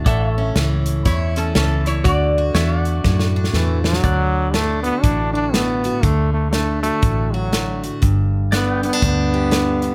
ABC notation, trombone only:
X:1
M:4/4
L:1/8
Q:"Swing" 1/4=120
K:D
V:1 name="Trombone"
z8 | z6 E, F,- | F,2 A, B, D D B,2 | A, A, A, A,2 F,2 z |
z2 B, B, B,4 |]